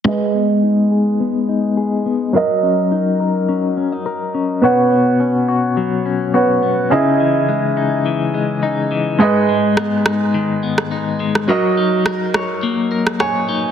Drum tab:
SD |----------------|----------------|----------------|----------------|

SD |----r-r----r---r|----r-r----rr---|